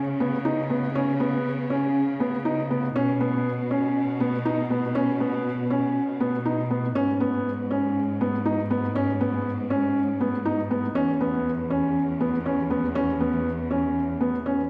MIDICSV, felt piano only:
0, 0, Header, 1, 2, 480
1, 0, Start_track
1, 0, Key_signature, 5, "minor"
1, 0, Tempo, 500000
1, 915, Time_signature, 4, 2, 24, 8
1, 14110, End_track
2, 0, Start_track
2, 0, Title_t, "Felt piano"
2, 0, Program_c, 0, 0
2, 194, Note_on_c, 0, 59, 83
2, 329, Note_off_c, 0, 59, 0
2, 431, Note_on_c, 0, 63, 93
2, 567, Note_off_c, 0, 63, 0
2, 672, Note_on_c, 0, 59, 76
2, 808, Note_off_c, 0, 59, 0
2, 915, Note_on_c, 0, 61, 98
2, 1050, Note_off_c, 0, 61, 0
2, 1151, Note_on_c, 0, 59, 84
2, 1422, Note_off_c, 0, 59, 0
2, 1633, Note_on_c, 0, 61, 83
2, 1904, Note_off_c, 0, 61, 0
2, 2112, Note_on_c, 0, 59, 86
2, 2248, Note_off_c, 0, 59, 0
2, 2353, Note_on_c, 0, 63, 94
2, 2488, Note_off_c, 0, 63, 0
2, 2596, Note_on_c, 0, 59, 79
2, 2731, Note_off_c, 0, 59, 0
2, 2838, Note_on_c, 0, 61, 101
2, 2972, Note_off_c, 0, 61, 0
2, 3076, Note_on_c, 0, 59, 89
2, 3346, Note_off_c, 0, 59, 0
2, 3558, Note_on_c, 0, 61, 84
2, 3827, Note_off_c, 0, 61, 0
2, 4034, Note_on_c, 0, 59, 87
2, 4170, Note_off_c, 0, 59, 0
2, 4276, Note_on_c, 0, 63, 92
2, 4410, Note_off_c, 0, 63, 0
2, 4514, Note_on_c, 0, 59, 80
2, 4649, Note_off_c, 0, 59, 0
2, 4752, Note_on_c, 0, 61, 99
2, 4888, Note_off_c, 0, 61, 0
2, 4993, Note_on_c, 0, 59, 83
2, 5264, Note_off_c, 0, 59, 0
2, 5476, Note_on_c, 0, 61, 83
2, 5746, Note_off_c, 0, 61, 0
2, 5956, Note_on_c, 0, 59, 87
2, 6091, Note_off_c, 0, 59, 0
2, 6197, Note_on_c, 0, 63, 85
2, 6331, Note_off_c, 0, 63, 0
2, 6435, Note_on_c, 0, 59, 72
2, 6570, Note_off_c, 0, 59, 0
2, 6675, Note_on_c, 0, 61, 103
2, 6810, Note_off_c, 0, 61, 0
2, 6916, Note_on_c, 0, 59, 86
2, 7186, Note_off_c, 0, 59, 0
2, 7397, Note_on_c, 0, 61, 81
2, 7667, Note_off_c, 0, 61, 0
2, 7880, Note_on_c, 0, 59, 85
2, 8014, Note_off_c, 0, 59, 0
2, 8116, Note_on_c, 0, 63, 91
2, 8251, Note_off_c, 0, 63, 0
2, 8357, Note_on_c, 0, 59, 84
2, 8491, Note_off_c, 0, 59, 0
2, 8596, Note_on_c, 0, 61, 97
2, 8731, Note_off_c, 0, 61, 0
2, 8837, Note_on_c, 0, 59, 82
2, 9106, Note_off_c, 0, 59, 0
2, 9315, Note_on_c, 0, 61, 87
2, 9585, Note_off_c, 0, 61, 0
2, 9797, Note_on_c, 0, 59, 83
2, 9932, Note_off_c, 0, 59, 0
2, 10036, Note_on_c, 0, 63, 95
2, 10171, Note_off_c, 0, 63, 0
2, 10277, Note_on_c, 0, 59, 80
2, 10412, Note_off_c, 0, 59, 0
2, 10514, Note_on_c, 0, 61, 97
2, 10649, Note_off_c, 0, 61, 0
2, 10757, Note_on_c, 0, 59, 84
2, 11027, Note_off_c, 0, 59, 0
2, 11235, Note_on_c, 0, 61, 90
2, 11505, Note_off_c, 0, 61, 0
2, 11717, Note_on_c, 0, 59, 86
2, 11851, Note_off_c, 0, 59, 0
2, 11959, Note_on_c, 0, 61, 88
2, 12093, Note_off_c, 0, 61, 0
2, 12196, Note_on_c, 0, 59, 83
2, 12330, Note_off_c, 0, 59, 0
2, 12435, Note_on_c, 0, 61, 99
2, 12570, Note_off_c, 0, 61, 0
2, 12676, Note_on_c, 0, 59, 83
2, 12946, Note_off_c, 0, 59, 0
2, 13157, Note_on_c, 0, 61, 83
2, 13427, Note_off_c, 0, 61, 0
2, 13637, Note_on_c, 0, 59, 79
2, 13772, Note_off_c, 0, 59, 0
2, 13880, Note_on_c, 0, 61, 84
2, 14014, Note_off_c, 0, 61, 0
2, 14110, End_track
0, 0, End_of_file